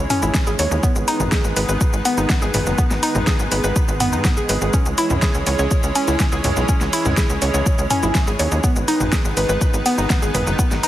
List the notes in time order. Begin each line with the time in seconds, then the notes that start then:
Already playing: E3 G#3 C#4
0.10 C#4, mid tom, open hi-hat, shaker
0.22 G#1 E4, shaker
0.34 kick, snare, shaker
0.47 G#1 G#4, shaker
0.59 D#2 C#5, open hi-hat, shaker
0.71 D#2, shaker
0.83 D#3 G#3 B3, kick, shaker
0.96 G#1, shaker
1.08 D#4, open hi-hat, shaker
1.20 G#1, mid tom, shaker
1.32 G#4, kick, snare, shaker
1.44 G#1, shaker
1.56 G#1 B4, open hi-hat, shaker
1.69 G#1 B4, shaker
1.81 kick, shaker
1.93 G#1, shaker
2.05 B3, open hi-hat, shaker
2.18 G#1 D#4, shaker
2.30 kick, snare, shaker
2.42 G#1 G#4, shaker
2.54 G#1 B4, mid tom, open hi-hat, shaker
2.66 F#1, shaker
2.78 B3, kick, shaker
2.91 G#1, snare, shaker
3.03 D#4, open hi-hat, shaker
3.15 G#1, mid tom, shaker
3.27 G#4, kick, snare, shaker
3.39 G#1, shaker
3.52 G#1 B4, open hi-hat, shaker
3.64 G#1 B4, shaker
3.76 kick, shaker
3.88 G#1, shaker
4.00 B3, mid tom, open hi-hat, shaker
4.12 G#2 D#4, shaker
4.25 kick, snare, shaker
4.37 G#1 G#4, shaker
4.49 G#1 B4, open hi-hat, shaker
4.61 G#1, shaker
4.73 E3 C#4, kick, shaker
4.86 C#2, shaker
4.98 E4, open hi-hat, shaker
5.10 C#2, mid tom, shaker
5.22 G#4, kick, snare, shaker
5.34 C#2, shaker
5.47 C#2 C#5, open hi-hat, shaker
5.59 C#2 C#5, shaker
5.71 kick, shaker
5.83 C#2, shaker
5.95 C#4, open hi-hat, shaker
6.08 C#2 E4, shaker
6.20 kick, snare, shaker
6.32 C#2 G#4, shaker
6.44 C#2 C#5, mid tom, open hi-hat, shaker
6.56 B1, shaker
6.69 C#4, kick, shaker
6.81 C#2, snare, shaker
6.93 E4, open hi-hat, shaker
7.05 C#2, mid tom, shaker
7.17 G#4, kick, snare, shaker
7.30 C#2, shaker
7.42 C#2 C#5, open hi-hat, shaker
7.54 C#2 C#5, shaker
7.66 kick, shaker
7.78 C#2, shaker
7.90 C#4, mid tom, open hi-hat, shaker
8.03 G#1 E4, shaker
8.15 kick, snare, shaker
8.27 G#1 G#4, shaker
8.39 D#2 C#5, open hi-hat, shaker
8.52 D#2, shaker
8.64 D#3 B3, kick, shaker
8.76 G#1, shaker
8.88 D#4, open hi-hat, shaker
9.00 G#1, mid tom, shaker
9.13 G#4, kick, snare, shaker
9.25 G#1, shaker
9.37 G#1 B4, open hi-hat, shaker
9.49 G#1 B4, shaker
9.61 kick, shaker
9.74 G#1, shaker
9.86 B3, open hi-hat, shaker
9.98 G#1 D#4, shaker
10.10 kick, snare, shaker
10.22 G#1 G#4, shaker
10.34 G#1 B4, mid tom, open hi-hat, shaker
10.47 F#1, shaker
10.59 F#3 B3, kick, shaker
10.71 G#1, snare, shaker
10.83 D#4, open hi-hat, shaker